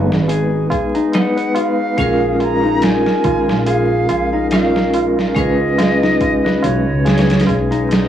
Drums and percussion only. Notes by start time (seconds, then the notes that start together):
0.09 snare, tabla na
0.28 closed hi-hat, tabla na
0.70 kick, closed hi-hat, tabla na
0.94 closed hi-hat, tabla na
1.12 snare, closed hi-hat, tabla na
1.37 closed hi-hat
1.54 closed hi-hat, tabla na
1.78 tabla na
1.97 kick, closed hi-hat, tabla na
2.40 closed hi-hat, tabla na
2.64 tabla na
2.82 snare, closed hi-hat, tabla na
3.06 snare
3.24 kick, closed hi-hat, tabla na
3.48 snare, tabla na
3.66 closed hi-hat, tabla na
4.09 closed hi-hat, tabla na
4.32 tabla na
4.51 snare, closed hi-hat, tabla na
4.76 snare
4.93 closed hi-hat, tabla na
5.16 snare, tabla na
5.36 kick, closed hi-hat, tabla na
5.59 tabla na
5.78 snare, closed hi-hat, tabla na
6.01 snare, tabla na
6.21 kick, closed hi-hat, tabla na
6.44 snare, tabla na
6.62 closed hi-hat, tabla na
6.86 tabla na
7.05 snare, closed hi-hat, tabla na
7.18 snare, closed hi-hat
7.28 snare, closed hi-hat, tabla na
7.39 snare, closed hi-hat
7.47 kick, closed hi-hat, tabla na
7.70 closed hi-hat, tabla na
7.89 snare, closed hi-hat, tabla na